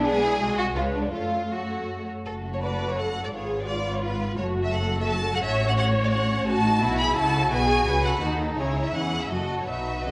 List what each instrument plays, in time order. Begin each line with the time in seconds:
Already playing: double bass section B1, cello section B3
0.05 viola section G#3 D4, violin section G#4 D5
0.23 viola section E4
0.40 double bass section C2, cello section G#3, viola section G#3 F#4, violin section D#5
0.58 violin section F#4
0.75 double bass section C#2, cello section G#3, viola section G#3 B4, violin section F4 C#5
0.93 violin section D4
1.12 double bass section F#2, cello section A3, viola section A3 A4, violin section F4 C#5
1.50 viola section A3 A4, violin section F#4 C#5
2.26 double bass section F#1, cello section F#2, violin section A3 F#4 A4
2.53 violin section C#5
2.61 viola section B4, violin section D5
2.89 violin section C#5
2.96 viola section A4, violin section F#5
3.23 violin section D5
3.32 double bass section G#1, cello section G#2, violin section B3 F4 C#5, viola section G#4
3.59 violin section D5
3.66 viola section F4, violin section D5
3.93 violin section C#5
4.01 violin section B4
4.37 double bass section F#1, cello section F#2, violin section A3 F#4 C#5, viola section F#4
4.64 violin section E5
4.72 viola section A4, violin section F#5
5.00 violin section E5
5.08 violin section A5
5.35 violin section F#5
5.42 double bass section A1, cello section A2, violin section C#4 E5, viola section C#5
5.68 violin section F#5
5.78 violin section F#5
6.04 violin section D5
6.11 violin section F#5
6.46 double bass section A1, cello section A2, violin section C#4 F#4 A5, viola section F#4
6.63 violin section D#4
6.81 double bass section B1, cello section B2, violin section E4 F#4, viola section E4
6.98 violin section G#4 B5
7.16 double bass section C#2, cello section C#3, violin section F#4 A4 A5
7.34 violin section A4
7.52 double bass section B1, cello section B2, viola section G#4, violin section B4 G#5
7.70 violin section C#5
7.87 double bass section C#2, cello section C#3, viola section F#4, violin section G#4 B4
8.04 violin section A4 F#5
8.22 double bass section D#2, cello section D#3, viola section D#4, violin section F#4 A4
8.41 violin section D#4
8.57 double bass section C#2, cello section C#3, viola section E4, violin section G#4 C#5
8.85 violin section E5
8.93 double bass section E2, cello section E3, violin section C#4 G#4 F#5
9.21 violin section E5
9.29 double bass section F#1, cello section F#2, viola section F#4, violin section F#4 A4 D#5
9.58 violin section C#5
9.67 double bass section B1, cello section B2, viola section D#4, violin section F#4 B4 E5
10.06 double bass section C#2, cello section C#3, viola section G#4, violin section D#5